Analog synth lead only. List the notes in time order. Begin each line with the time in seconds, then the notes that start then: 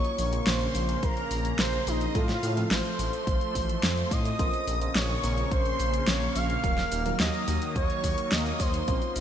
Already playing: C#5
0.47 C5
1.03 A#4
1.59 C5
1.87 D#4
2.15 F4
2.72 C5
4.12 D#5
4.96 C#5
5.52 C5
6.08 C#5
6.35 F5
7.20 D#5
7.76 C#5
8.32 D#5
8.60 C5